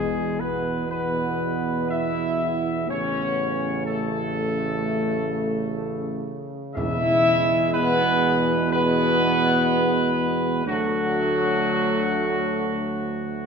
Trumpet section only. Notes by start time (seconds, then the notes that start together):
Already playing: G#4
0.40 B4
0.89 B4
1.90 E5
2.89 C#5
3.85 A4
6.76 E5
7.73 B4
8.71 B4
10.66 F#4